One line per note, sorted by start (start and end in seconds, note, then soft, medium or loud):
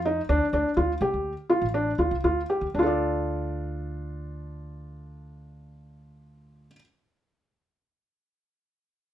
0.00 0.18 F2 medium
0.05 0.20 D#4 medium
0.29 0.39 D2 medium
0.29 0.44 D4 medium
0.53 0.62 D2 medium
0.53 0.68 D4 medium
0.77 0.96 D2 medium
0.77 0.92 F4 soft
1.01 1.10 C3 medium
1.01 1.32 G4 medium
1.14 1.33 D2 medium
1.50 1.65 F4 medium
1.62 1.92 A1 medium
1.74 1.90 D4 medium
1.98 2.09 D2 medium
1.98 2.15 F4 soft
2.11 2.21 C2 medium
2.24 2.45 D2 medium
2.24 2.40 F4 medium
2.50 2.66 G4 soft
2.61 2.72 D2 medium
2.74 6.67 D2 medium
2.74 6.67 D4 soft
2.79 6.71 F4 soft
2.79 6.75 A4 soft
2.87 6.79 D5 soft